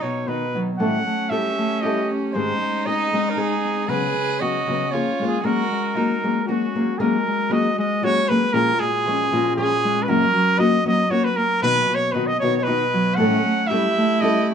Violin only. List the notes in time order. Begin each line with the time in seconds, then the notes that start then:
Already playing: D#4
0.78 C#4
2.33 D#4
3.90 G#4
4.42 F#4
4.93 F4
5.44 F#4
5.97 D#4
6.47 C#4
13.18 C#4
13.69 E4